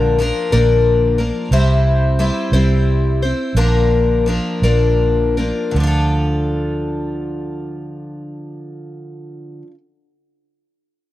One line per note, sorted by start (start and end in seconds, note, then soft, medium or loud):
0.00 0.30 A#1 medium
0.00 0.19 A#2 medium
0.00 0.20 D3 medium
0.00 0.17 F3 medium
0.00 0.19 A#3 medium
0.00 0.19 D4 medium
0.00 0.20 A#4 medium
0.19 0.52 F3 medium
0.19 0.51 A#3 medium
0.19 0.51 D4 medium
0.19 0.51 A#4 medium
0.52 1.30 A#1 medium
0.52 1.19 A#2 medium
0.52 1.19 D3 medium
0.52 1.19 F3 medium
0.52 1.19 A#3 medium
0.52 1.18 D4 medium
0.52 1.17 A#4 medium
1.18 1.52 F3 soft
1.18 1.52 A#3 soft
1.18 1.52 D4 soft
1.18 1.51 A#4 medium
1.51 2.29 C2 medium
1.51 2.18 C3 medium
1.51 2.18 G3 medium
1.51 2.19 C4 medium
1.51 2.19 E4 medium
1.51 2.19 C5 medium
2.19 2.52 G3 medium
2.19 2.53 C4 medium
2.19 2.52 E4 medium
2.19 2.52 C5 medium
2.52 3.32 C2 medium
2.52 3.22 C3 medium
2.52 3.21 G3 medium
2.52 3.21 C4 medium
2.52 3.21 E4 medium
2.52 3.21 C5 medium
3.22 3.57 C4 soft
3.22 3.57 E4 soft
3.22 3.56 C5 soft
3.55 4.38 A#1 medium
3.55 4.27 A#2 medium
3.55 4.27 D3 medium
3.55 4.25 F3 medium
3.55 4.26 A#3 medium
3.55 4.27 D4 medium
3.55 4.27 A#4 medium
4.26 4.62 F3 medium
4.26 4.63 A#3 medium
4.26 4.63 D4 medium
4.26 4.62 A#4 medium
4.62 5.51 A#1 medium
4.62 5.39 A#2 medium
4.62 5.38 D3 medium
4.62 5.38 F3 medium
4.62 5.38 A#3 medium
4.62 5.37 D4 medium
4.62 5.36 A#4 medium
5.37 5.75 F3 soft
5.37 5.77 A#3 soft
5.37 5.76 D4 soft
5.37 5.76 A#4 soft
5.71 9.61 D2 medium
5.71 9.62 D3 medium
5.76 9.67 F3 medium
5.76 9.71 D4 medium
5.83 9.74 F4 medium
5.83 9.78 A4 medium